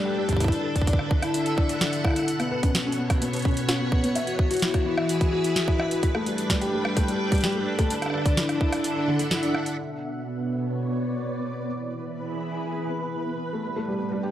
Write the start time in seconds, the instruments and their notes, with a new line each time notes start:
Already playing: felt piano G3 A3 G4, string machine G3 D4 A4 B4 G5
0.05 felt piano G4
0.17 felt piano G3
0.29 kick, closed hi-hat
0.33 kick
0.37 kick
0.40 string machine D3, felt piano E4, kick, closed hi-hat
0.44 kick
0.48 kick, closed hi-hat
0.52 felt piano D4
0.76 felt piano D4, kick, closed hi-hat
0.81 kick
0.87 felt piano D5, string machine E5, kick, closed hi-hat
0.93 kick
0.99 felt piano D4, cross-stick
1.11 kick
1.23 felt piano E4, string machine F#5, cross-stick, closed hi-hat
1.34 felt piano D4, closed hi-hat
1.46 closed hi-hat
1.58 felt piano D4, kick
1.69 felt piano D5, closed hi-hat
1.81 felt piano D4, snare, closed hi-hat
1.93 closed hi-hat
2.04 felt piano E4, kick, cross-stick
2.07 cross-stick
2.10 cross-stick
2.13 cross-stick
2.16 felt piano D4, cross-stick, closed hi-hat
2.19 cross-stick
2.22 cross-stick
2.25 string machine B2, cross-stick, closed hi-hat
2.40 felt piano B3, cross-stick, closed hi-hat
2.47 string machine B3
2.51 felt piano B4
2.63 felt piano C#4, kick, closed hi-hat
2.75 snare, closed hi-hat
2.82 string machine C#5
2.87 felt piano C#4
2.92 closed hi-hat
2.98 felt piano B3
3.10 kick, cross-stick, closed hi-hat
3.22 felt piano B3, closed hi-hat
3.33 felt piano B4, closed hi-hat
3.36 closed hi-hat
3.39 closed hi-hat
3.42 felt piano C#4, kick, closed hi-hat
3.48 closed hi-hat
3.51 closed hi-hat
3.54 closed hi-hat
3.57 closed hi-hat
3.69 felt piano C#4, snare, closed hi-hat
3.80 felt piano B3
3.92 kick
4.04 felt piano B3, closed hi-hat
4.15 string machine E3, felt piano E5, closed hi-hat
4.27 felt piano F#4, closed hi-hat
4.39 string machine E4, kick
4.51 felt piano F#4, closed hi-hat
4.54 closed hi-hat
4.57 closed hi-hat
4.59 felt piano E4, snare, closed hi-hat
4.62 closed hi-hat
4.68 string machine G#4, closed hi-hat
4.71 cross-stick, closed hi-hat
4.74 kick, closed hi-hat
4.86 felt piano E4
4.92 string machine B4
4.97 felt piano E5, string machine B5, cross-stick
5.09 felt piano F#4, closed hi-hat
5.21 kick, closed hi-hat
5.33 felt piano F#4
5.44 felt piano E4, closed hi-hat
5.56 snare, closed hi-hat
5.68 felt piano E4, kick
5.79 felt piano E5, cross-stick
5.91 felt piano F#4, closed hi-hat
6.03 string machine G3 D4, kick, closed hi-hat
6.15 felt piano A3, cross-stick
6.26 felt piano G3, closed hi-hat
6.38 closed hi-hat
6.44 string machine A4
6.50 felt piano G3, kick, snare, closed hi-hat
6.61 felt piano G4, string machine G5, closed hi-hat
6.73 felt piano A3
6.85 cross-stick
6.97 felt piano A3, kick, closed hi-hat
7.08 felt piano G3, closed hi-hat
7.32 felt piano G3, kick, closed hi-hat
7.35 closed hi-hat
7.38 closed hi-hat
7.41 felt piano G4, snare, closed hi-hat
7.44 closed hi-hat
7.52 felt piano A3, closed hi-hat
7.79 felt piano A3, kick, closed hi-hat
7.90 string machine D3, felt piano D4, closed hi-hat
8.02 cross-stick, closed hi-hat
8.06 cross-stick
8.10 felt piano D4, cross-stick
8.14 cross-stick
8.18 cross-stick
8.22 felt piano D5, kick, cross-stick, closed hi-hat
8.37 felt piano E4, snare, closed hi-hat
8.47 string machine E5, cross-stick, closed hi-hat
8.61 felt piano E4, kick
8.72 felt piano D4, string machine F#5, cross-stick, closed hi-hat
8.84 closed hi-hat
8.96 felt piano D4
9.08 felt piano D3
9.19 felt piano D3, closed hi-hat
9.31 felt piano E4, snare, closed hi-hat
9.43 felt piano D4, closed hi-hat
9.54 felt piano D4, cross-stick
9.66 closed hi-hat
9.78 string machine B2, synth texture B3 B4
10.06 string machine B3
10.31 string machine C#5
10.60 string machine D5
11.65 string machine E3
11.83 string machine B4 B5
11.91 string machine E4
12.16 string machine G#4
13.53 string machine G3, felt piano A3
13.76 felt piano A3, string machine D4
13.84 string machine A4
13.88 felt piano G3
14.09 felt piano G3, string machine G5
14.23 felt piano G4